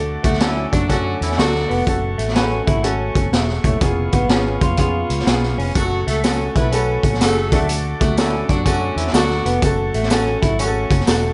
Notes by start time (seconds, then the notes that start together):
Already playing: D2 A3 D4 F#4 A4 F#5 D6
0.24 D2 F#3 A3 F#4, kick, closed hi-hat
0.33 snare
0.40 E3 A3 C#4 D4 E4 F#4 A4, snare, closed hi-hat
0.72 F#2 F#3 D4 F#4, kick, closed hi-hat
0.88 D3 F#3 A3 C#4 F#4 A4, kick, closed hi-hat
1.21 E2 E3 E4, closed hi-hat
1.31 snare
1.38 D2 F#3 A3 D4 F#4 A4, snare, closed hi-hat
1.55 snare
1.69 F1 B3, open hi-hat
1.86 F#1 A3 C#4 F#4 A4 C#6, kick, closed hi-hat
2.18 A1 A3, closed hi-hat
2.28 snare
2.34 G#3 C#4 F#4 B4, snare, closed hi-hat
2.40 A3
2.67 G#1 E4, kick, closed hi-hat
2.83 A3 C#4 F#4 A4, closed hi-hat
3.15 F#1, kick, closed hi-hat
3.32 E1 G#4 E5, snare, closed hi-hat
3.49 snare
3.64 E1 A3 E4 C#5, kick, closed hi-hat
3.81 F1 B3 C#4 F4 G#4 B4 F5 C#6, kick, closed hi-hat
4.12 G#1 B3, kick, closed hi-hat
4.29 G#1 B3 C#4 F4 G#4, snare, closed hi-hat
4.61 F2 F4, kick, closed hi-hat
4.77 B3 C#4 F4 G#4, kick, closed hi-hat
5.10 C#2, closed hi-hat
5.19 snare
5.26 B1 B3 C#4 F4 G#4, snare, closed hi-hat
5.43 snare
5.58 F1 C#4, open hi-hat
5.74 F#1 F#3 A3 C#4 F#4 A4 F#5, kick, closed hi-hat, tambourine
6.07 C#2 A3 A4, closed hi-hat
6.23 F#3 A3 C#4 F#4 A4, snare, closed hi-hat, tambourine
6.56 B1 B3 E4 B4, kick, closed hi-hat
6.72 A3 C#4 F#4 A4, closed hi-hat, tambourine
7.03 A1, kick, closed hi-hat
7.14 snare
7.20 F#1 A3 C#4 F#4 G#4 A4, snare, closed hi-hat, tambourine
7.52 D2 A3 D4 F#4 A4 F#5 D6, kick, closed hi-hat
7.69 closed hi-hat, tambourine
8.01 D2 F#3 A3 F#4, kick, closed hi-hat
8.17 E3 A3 C#4 D4 E4 F#4 A4, snare, closed hi-hat, tambourine
8.48 F#2 F#3 D4 F#4, kick, closed hi-hat
8.65 D3 F#3 A3 C#4 F#4 A4, kick, closed hi-hat, tambourine
8.96 E2 E3 E4, closed hi-hat
9.07 snare
9.13 D2 F#3 A3 D4 F#4 A4, snare, closed hi-hat, tambourine
9.30 snare
9.45 F1 B3, closed hi-hat
9.62 F#1 A3 C#4 F#4 A4 C#6, kick, closed hi-hat, tambourine
9.94 A1 A3, closed hi-hat
10.03 snare
10.10 A3 C#4 F#4 A4, snare, closed hi-hat, tambourine
10.42 G#1 E4, kick, closed hi-hat
10.59 A3 C#4 F#4 G#4, closed hi-hat, tambourine
10.67 A4
10.90 F#1, kick, closed hi-hat
11.00 snare
11.07 E1 A3 C#4 F#4 A4, snare, closed hi-hat, tambourine